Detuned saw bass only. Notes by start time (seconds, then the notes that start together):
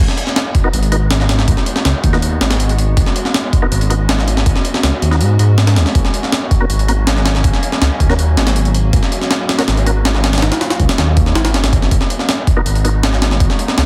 0.73 G#1
1.11 G#1
1.48 G#1
1.85 C#2
2.04 D#2
2.41 G#1
2.97 G#1
3.71 G#1
4.09 G#1
4.46 G#1
4.83 C#2
5.02 D#2
5.21 G#2
5.39 G#2
5.76 D#2
5.95 G#1
6.70 G#1
7.07 G#1
7.44 G#1
7.81 C#2
8.00 D#2
8.37 G#1
8.93 G#1
9.68 G#1
10.05 G#1
10.42 G#1
10.80 C#2
10.98 D#2
11.35 G#1
11.54 F#1
11.63 G#1
11.73 G#1
11.91 G#1
12.66 G#1
13.03 G#1
13.40 G#1
13.78 C#2